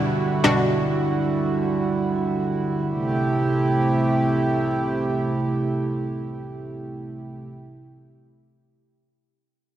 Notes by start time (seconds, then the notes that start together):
Already playing: B2 D3 G3 D4 E4 F#4
0.44 B2 G3 D4 F#4
2.90 C3 A3 E4 G4